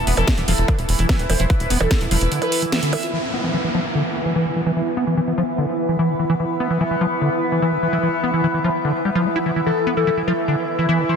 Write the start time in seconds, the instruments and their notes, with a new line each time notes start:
Already playing: synth texture E3 E4, ambient pad E4 B4 E5 A5
0.07 analog synth bass E1, acid bass B3, open hi-hat
0.17 analog synth bass E1, acid bass E3, analog synth lead A4, closed hi-hat, percussion blips
0.28 kick, snare, closed hi-hat
0.38 analog synth bass E1, acid bass E3, closed hi-hat
0.48 analog synth bass E1, acid bass F3, analog synth lead A4, open hi-hat
0.58 analog synth bass E1, closed hi-hat
0.68 acid bass D3, kick, closed hi-hat, percussion blips
0.79 analog synth bass E1, closed hi-hat
0.89 analog synth bass E1, open hi-hat
0.99 analog synth bass E1, acid bass E3, closed hi-hat
1.09 acid bass E3, analog synth lead B4, kick, snare, closed hi-hat
1.19 analog synth bass E1, acid bass D3, closed hi-hat
1.30 analog synth bass E1, acid bass E3, analog synth lead C5, open hi-hat, percussion blips
1.40 analog synth bass E1, acid bass E3, closed hi-hat
1.50 acid bass E3, analog synth lead B4, kick, closed hi-hat
1.60 analog synth bass E1, closed hi-hat
1.70 analog synth bass E1, acid bass B3, open hi-hat
1.81 analog synth bass E1, acid bass E3, analog synth lead A4, closed hi-hat, percussion blips
1.91 acid bass E3, kick, snare, closed hi-hat
2.01 analog synth bass E1, acid bass E3, closed hi-hat
2.11 analog synth bass E1, acid bass F3, analog synth lead B4, open hi-hat
2.21 analog synth bass E1, closed hi-hat
2.32 acid bass D3, closed hi-hat
2.42 analog synth lead B4, closed hi-hat, percussion blips
2.52 open hi-hat
2.62 acid bass E3, closed hi-hat
2.72 acid bass E3, analog synth lead E5, snare, closed hi-hat
2.83 acid bass D3, closed hi-hat
2.93 acid bass E3, analog synth lead E5, open hi-hat, percussion blips
3.03 acid bass F4, closed hi-hat
3.13 synth texture E3 B3, acid bass E3, ambient pad E4, downlifter
3.29 ambient pad B4
3.34 acid bass B3
3.44 acid bass E3
3.54 acid bass E3
3.64 acid bass E3
3.74 acid bass F3
3.79 ambient pad E5
3.95 acid bass D3
4.05 ambient pad B5
4.25 acid bass E3
4.36 acid bass E3
4.46 acid bass D3
4.56 acid bass E3
4.66 acid bass E3
4.76 acid bass E3
4.97 acid bass B3
5.07 acid bass E3
5.17 acid bass E3
5.28 acid bass E3
5.38 acid bass F3
5.58 acid bass D3
5.89 acid bass E3
5.99 acid bass E3
6.09 acid bass D3
6.19 acid bass E3
6.30 acid bass E3
6.40 acid bass E3
6.60 acid bass B3
6.70 acid bass E3
6.81 acid bass E3
6.91 acid bass E3
7.01 acid bass F3
7.21 acid bass D3
7.52 acid bass E3
7.62 acid bass E3
7.72 acid bass D3
7.83 acid bass E3
7.93 acid bass E3
8.03 acid bass E3
8.23 acid bass B3
8.34 acid bass E3
8.44 acid bass E3
8.54 acid bass E3
8.64 acid bass F3
8.85 acid bass D3
9.05 acid bass G3
9.15 acid bass F3
9.25 acid bass B3
9.36 acid bass E4
9.46 acid bass E3
9.56 acid bass E3
9.66 acid bass E3, synth texture E4, analog synth lead A4
9.87 acid bass B3
9.97 acid bass E3, analog synth lead A4
10.07 acid bass E3
10.17 acid bass E3
10.27 acid bass F3, analog synth lead A4
10.48 acid bass D3
10.79 acid bass E3
10.89 acid bass E3, analog synth lead B4
10.99 acid bass D3
11.09 acid bass E3, analog synth lead C5